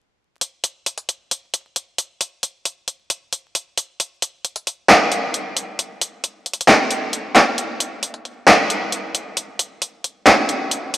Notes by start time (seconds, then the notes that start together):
0.41 closed hi-hat
0.64 closed hi-hat
0.86 closed hi-hat
0.98 closed hi-hat
1.09 closed hi-hat
1.31 closed hi-hat
1.54 closed hi-hat
1.76 closed hi-hat
1.98 closed hi-hat
2.21 closed hi-hat
2.43 closed hi-hat
2.65 closed hi-hat
2.88 closed hi-hat
3.10 closed hi-hat
3.33 closed hi-hat
3.55 closed hi-hat
3.77 closed hi-hat
4.00 closed hi-hat
4.22 closed hi-hat
4.45 closed hi-hat
4.56 closed hi-hat
4.67 closed hi-hat
4.89 clap, closed hi-hat
5.12 closed hi-hat
5.34 closed hi-hat
5.57 closed hi-hat
5.79 closed hi-hat
6.01 closed hi-hat
6.24 closed hi-hat
6.46 closed hi-hat
6.54 closed hi-hat
6.61 closed hi-hat
6.68 clap, closed hi-hat
6.91 closed hi-hat
7.13 closed hi-hat
7.36 clap, closed hi-hat
7.58 closed hi-hat
7.80 closed hi-hat
8.03 closed hi-hat
8.14 closed hi-hat
8.25 closed hi-hat
8.48 clap, closed hi-hat
8.70 closed hi-hat
8.92 closed hi-hat
9.15 closed hi-hat
9.37 closed hi-hat
9.59 closed hi-hat
9.82 closed hi-hat
10.04 closed hi-hat
10.27 clap, closed hi-hat
10.49 closed hi-hat
10.71 closed hi-hat
10.94 closed hi-hat